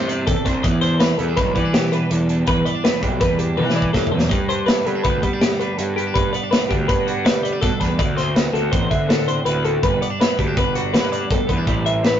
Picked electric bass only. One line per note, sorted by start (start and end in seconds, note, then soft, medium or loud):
0.00 0.22 C3 medium
0.27 0.35 E2 medium
0.46 0.61 C2 medium
0.65 1.11 E2 medium
1.19 1.35 E2 medium
1.38 1.53 B1 medium
1.56 2.03 E3 medium
2.11 2.42 E2 medium
2.48 2.63 E2 loud
3.03 3.19 B1 medium
3.21 3.60 E2 medium
3.58 3.89 E3 medium
3.94 4.02 G2 medium
4.13 4.29 E2 medium
4.31 4.78 G2 medium
4.86 5.02 G2 medium
5.05 5.20 D2 medium
5.23 5.70 G3 medium
5.79 6.10 G2 medium
6.16 6.31 G2 medium
6.71 6.86 D2 medium
6.89 7.26 G2 medium
7.26 7.57 G3 medium
7.62 7.70 B2 medium
7.81 7.96 E2 medium
8.00 8.46 D2 medium
8.53 8.69 D2 medium
8.73 8.88 A1 medium
8.91 9.38 D3 medium
9.46 9.77 D2 medium
9.83 9.99 G1 medium
10.39 10.54 D2 medium
10.57 10.96 G1 medium
10.94 11.25 G2 medium
11.31 11.38 B1 medium
11.49 11.65 E2 medium
11.67 12.14 A1 medium